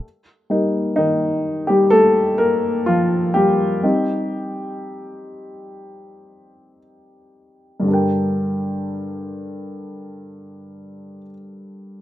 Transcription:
<<
  \new Staff \with { instrumentName = "Grand piano" } { \time 4/4 \key g \minor \tempo 4 = 60 r4 <ees ees'>8. <g g'>16 <a a'>8 <bes bes'>8 <f f'>8 <g g'>8~ | <g g'>2. r4 | r1 | }
  \new Staff \with { instrumentName = "Grand piano" } { \time 4/4 \key g \minor r8 <g bes ees'>4. r2 | <g c' ees'>1 | <g, d g d' bes' g''>1 | }
>>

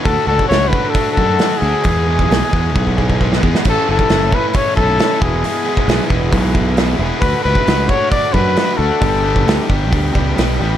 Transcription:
<<
  \new Staff \with { instrumentName = "Trumpet" } { \time 4/4 \key a \major \tempo 4 = 134 a'8 a'8 cis''8 b'8 a'8 a'4 gis'8~ | gis'2. r4 | a'8 a'4 b'16. b'32 cis''8 a'4 gis'8~ | gis'4. r2 r8 |
b'8 b'4 cis''8 d''8 b'4 a'8~ | a'4. r2 r8 | }
  \new Staff \with { instrumentName = "Overdriven electric guitar" } { \time 4/4 \key a \major <d a d' fis'>8 <a d' fis'>8 <d a d' fis'>8 <a d' fis'>8 <d a d' fis'>8 <d a d' fis'>8 <d a d' fis'>8 <a d' fis'>8 | <e, b, e gis b gis'>8 <e gis b gis'>8 <e, b, e gis b gis'>8 <e gis b gis'>8 <e gis b gis'>8 <e, b, e gis b gis'>8 <e gis b gis'>8 <e gis b gis'>8 | <a, e a cis' e'>8 <a cis' e'>8 <a, e a cis' e'>8 <a cis' e'>8 <e a cis' e'>8 <a, e a cis' e'>8 <e a cis' e'>8 <e, b, e gis b e'>8 | <e, b, e gis b e'>8 <e gis b e'>8 <e, b, e gis b e'>8 <e gis b e'>8 <e gis b e'>8 <e, b, e gis b e'>8 <e gis b e'>8 <e gis b e'>8 |
<d a d' fis'>8 <a d' fis'>8 <d a d' fis'>8 <a d' fis'>8 <d a d' fis'>8 <d a d' fis'>8 <d a d' fis'>8 <a d' fis'>8 | <g, d g b d' g'>8 <g b d' g'>8 <g, d g b d' g'>8 <g b d' g'>8 <g b d' g'>8 <g, d g b d' g'>8 <g b d' g'>8 <g b d' g'>8 | }
  \new Staff \with { instrumentName = "Overdriven electric guitar" } { \time 4/4 \key a \major <d a d' fis'>8 <a d' fis'>8 <d a d' fis'>4. <a d' fis'>8 <d a d' fis'>8 <a d' fis'>8 | <e, b, e gis b gis'>8 <e gis b gis'>8 <e, b, e gis b gis'>4. <e gis b gis'>8 <e gis b gis'>8 <e gis b gis'>8 | <a, e a cis' a'>8 <a cis' a'>8 <a, e a cis' a'>4. <a cis' a'>8 <e a cis' a'>8 <e, b, e gis b gis'>8 | <e, b, e gis b gis'>8 <e gis b gis'>8 <e, b, e gis b gis'>4. <e gis b gis'>8 <e gis b gis'>8 <e gis b gis'>8 |
<d a d' fis'>8 <a d' fis'>8 <d a d' fis'>4. <a d' fis'>8 <d a d' fis'>8 <a d' fis'>8 | <g, d g b d' g'>8 <g b d' g'>8 <g, d g b d' g'>4. <g b d' g'>8 <g b d' g'>8 <g b d' g'>8 | }
  \new Staff \with { instrumentName = "Fingered electric bass" } { \clef bass \time 4/4 \key a \major d,16 r16 cis,16 r16 cis,8 r4 fis,8 r8 d,16 r16 | e,4 b,,16 r16 e,8 b,,4. e,16 r16 | a,,16 r16 fis,,16 r16 fis,,8 r4 b,,8 r8 e,,8 | r4 b,,16 r16 e,,8 b,,4. e,,16 r16 |
d,16 r16 cis,16 r16 cis,8 r4 fis,8 r8 d,16 r16 | g,,4 d,16 r16 g,,8 d,8 cis,8 b,,8 a,,8 | }
  \new DrumStaff \with { instrumentName = "Drums" } \drummode { \time 4/4 <hho bd>8. bd16 <hho sn>8 bd8 <hho bd>8 bd8 <hho sn>4 | <hho bd>8. bd16 <hho sn>8 bd8 bd16 bd16 bd16 bd16 bd16 sn16 bd16 sn16 | <cymc bd>8. bd16 <hho sn>8 bd8 <hho bd>8 bd8 <hho sn>8 bd8 | hho8. bd16 <hho sn>8 bd8 <hho bd>8 bd8 <hho sn>4 |
<hho bd>8. bd16 <hho sn>8 bd8 <hho bd>8 bd8 <hho sn>4 | <hho bd>8. bd16 <hho sn>8 bd8 <hho bd>8 bd8 <hho sn>4 | }
>>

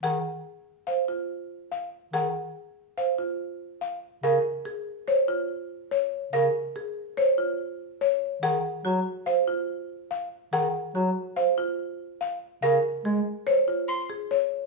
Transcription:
<<
  \new Staff \with { instrumentName = "Violin" } { \time 5/4 \key aes \mixolydian \tempo 4 = 143 r1 r4 | r1 r4 | r1 r4 | r1 r4 |
r1 r4 | r1 r4 | r2. c'''8 r4. | }
  \new Staff \with { instrumentName = "Marimba" } { \time 5/4 \key aes \mixolydian ges''8 r4. f''8 r4. f''8 r8 | ges''8 r4. f''8 r4. f''8 r8 | f''8 r4. des''8 r4. des''8 r8 | f''8 r4. des''8 r4. des''8 r8 |
ges''8 r4. f''8 r4. f''8 r8 | ges''8 r4. f''8 r4. f''8 r8 | f''8 r4. des''8 r4. des''8 r8 | }
  \new Staff \with { instrumentName = "Marimba" } { \time 5/4 \key aes \mixolydian aes'8 r4. c''8 f'8 r2 | aes'8 r4. c''8 f'8 r2 | bes'8 r8 aes'8 r8 c''8 f'8 r2 | bes'8 r8 aes'8 r8 c''8 f'8 r2 |
aes'8 r8 ges'8 r8 c''8 f'8 r2 | aes'8 r8 ges'8 r8 c''8 f'8 r2 | bes'8 r8 aes'8 r8 c''8 f'8 r8 aes'8 r4 | }
  \new Staff \with { instrumentName = "Bass clarinet" } { \clef bass \time 5/4 \key aes \mixolydian ees8 r1 r8 | ees8 r1 r8 | des8 r1 r8 | des8 r1 r8 |
ees8 r8 ges8 r2. r8 | ees8 r8 ges8 r2. r8 | des8 r8 aes8 r2. r8 | }
>>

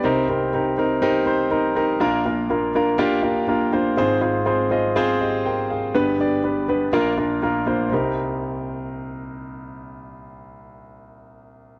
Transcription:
<<
  \new Staff \with { instrumentName = "Grand piano" } { \time 4/4 \key c \minor \tempo 4 = 122 << { r1 | r1 | r2 r8 <g' ees''>8 <bes' g''>8 <aes' f''>8~ | <aes' f''>8 r2. r8 |
r1 | r1 | } \\ { <c' ees' g' bes'>8 <c' ees' g' bes'>8 <c' ees' g' bes'>8 <c' ees' g' bes'>8 <c' ees' g' bes'>8 <c' ees' g' c''>8 <c' ees' g' bes'>8 <c' ees' g' bes'>8 | <bes d' f' bes'>8 <bes d' f' bes'>8 <bes d' f' bes'>8 <bes d' f' bes'>8 <bes d' f' g'>8 <bes d' f' bes'>8 <bes d' f' bes'>8 <bes d' f' c''>8 | <c' f' aes' c''>8 <c' f' aes' c''>8 <c' f' aes' c''>8 <c' f' aes' ees''>8 <c' f' aes' c''>8 r4. | <b d' g' b'>8 <b d' g' d''>8 <b d' g' b'>8 <b d' g' b'>8 <bes d' f' bes'>8 <bes d' f' bes'>8 <bes d' f' bes'>8 <bes d' f' c''>8 |
<c' ees' g' bes'>1~ | <c' ees' g' bes'>1 | } >> }
  \new Staff \with { instrumentName = "Grand piano" } { \clef bass \time 4/4 \key c \minor <c, c>1 | <bes,, bes,>1 | <aes,, aes,>1 | <g,, g,>2 <bes,, bes,>2 |
c,1~ | c,1 | }
>>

